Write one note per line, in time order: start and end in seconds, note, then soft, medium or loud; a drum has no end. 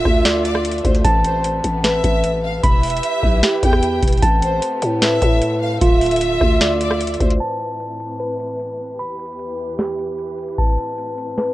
0.00 1.03 D3 medium
0.00 2.60 A3 medium
0.00 1.03 F4 medium
0.00 1.05 F4 loud
0.00 0.41 E5 loud
0.00 1.03 E5 medium
0.05 0.82 D2 loud
0.05 kick loud
0.05 cross-stick medium
0.25 1.05 D5 medium
0.25 snare loud
0.25 closed hi-hat loud
0.45 0.82 D5 medium
0.45 closed hi-hat medium
0.55 cross-stick loud
0.65 closed hi-hat medium
0.71 closed hi-hat medium
0.78 closed hi-hat soft
0.85 1.04 D2 loud
0.85 1.04 C5 medium
0.85 kick loud
0.85 closed hi-hat medium
0.95 closed hi-hat medium
1.05 1.62 A1 loud
1.05 2.62 C3 medium
1.05 2.62 B3 medium
1.05 2.64 A5 loud
1.05 kick loud
1.05 closed hi-hat medium
1.24 1.43 C5 medium
1.24 closed hi-hat medium
1.44 closed hi-hat medium
1.64 2.02 A1 loud
1.64 closed hi-hat medium
1.84 2.64 B4 medium
1.84 2.40 E5 loud
1.84 snare loud
1.84 closed hi-hat medium
2.04 2.61 A1 loud
2.04 kick loud
2.04 closed hi-hat medium
2.24 closed hi-hat medium
2.44 2.62 F5 medium
2.63 3.02 E1 loud
2.63 4.21 E3 medium
2.63 4.21 E4 medium
2.63 4.21 G4 medium
2.63 4.21 B4 medium
2.63 3.59 E5 loud
2.63 4.22 B5 loud
2.63 kick loud
2.63 closed hi-hat medium
2.83 closed hi-hat medium
2.83 open hi-hat medium
2.90 closed hi-hat medium
2.97 closed hi-hat medium
3.03 closed hi-hat loud
3.23 3.42 B1 loud
3.23 kick medium
3.43 4.22 G4 medium
3.43 snare loud
3.43 closed hi-hat medium
3.62 4.01 E2 loud
3.62 4.19 G5 medium
3.62 kick loud
3.62 closed hi-hat medium
3.73 cross-stick loud
3.83 closed hi-hat medium
4.03 4.22 E1 loud
4.03 kick loud
4.03 closed hi-hat medium
4.08 closed hi-hat medium
4.13 closed hi-hat medium
4.17 closed hi-hat soft
4.22 4.61 A1 loud
4.22 5.80 C3 medium
4.22 7.37 A3 medium
4.22 5.80 B3 medium
4.22 5.81 A5 loud
4.22 kick loud
4.22 closed hi-hat loud
4.42 4.61 C5 medium
4.42 closed hi-hat medium
4.62 closed hi-hat medium
4.82 5.20 A2 loud
4.82 closed hi-hat medium
5.02 5.81 B4 medium
5.02 5.58 E5 loud
5.02 snare loud
5.02 closed hi-hat loud
5.22 5.79 A2 loud
5.22 kick loud
5.22 closed hi-hat medium
5.42 closed hi-hat medium
5.62 5.80 F5 medium
5.81 6.39 D1 loud
5.81 7.39 D3 medium
5.81 7.40 F4 loud
5.81 7.39 F4 medium
5.81 7.39 E5 medium
5.81 6.77 E5 loud
5.81 kick loud
5.81 closed hi-hat medium
6.01 closed hi-hat soft
6.01 open hi-hat medium
6.06 closed hi-hat medium
6.11 closed hi-hat medium
6.16 closed hi-hat medium
6.21 closed hi-hat medium
6.41 7.17 D2 loud
6.41 kick medium
6.41 cross-stick medium
6.61 7.40 D5 medium
6.61 snare loud
6.61 closed hi-hat medium
6.80 7.18 D5 medium
6.80 closed hi-hat medium
6.91 cross-stick loud
7.01 closed hi-hat medium
7.07 closed hi-hat medium
7.14 closed hi-hat soft
7.20 7.40 D2 loud
7.20 7.39 C5 medium
7.20 kick loud
7.20 closed hi-hat medium
7.30 closed hi-hat medium
7.40 8.98 A2 medium
7.40 8.98 E3 medium
7.40 8.98 C4 medium
7.40 11.54 B4 medium
7.40 8.99 A5 loud
7.40 closed hi-hat medium
7.60 closed hi-hat medium
7.80 closed hi-hat medium
8.00 closed hi-hat medium
8.20 8.99 B4 medium
8.20 closed hi-hat medium
8.40 closed hi-hat medium
8.59 closed hi-hat medium
8.99 10.57 E2 medium
8.99 11.54 E3 medium
8.99 10.57 G4 medium
8.99 10.58 B5 loud
8.99 closed hi-hat medium
9.19 closed hi-hat medium
9.26 closed hi-hat medium
9.32 closed hi-hat medium
9.39 closed hi-hat medium
9.79 10.58 G4 medium
9.79 snare loud
9.79 closed hi-hat medium
9.99 closed hi-hat medium
10.18 closed hi-hat medium
10.38 closed hi-hat medium
10.43 closed hi-hat medium
10.48 closed hi-hat soft
10.53 closed hi-hat soft
10.58 11.54 A2 medium
10.58 11.54 C4 medium
10.58 11.54 A5 medium
10.58 kick loud
10.58 closed hi-hat medium
10.78 closed hi-hat medium
10.98 closed hi-hat medium
11.18 closed hi-hat medium
11.38 11.54 B4 medium
11.38 snare loud
11.38 closed hi-hat medium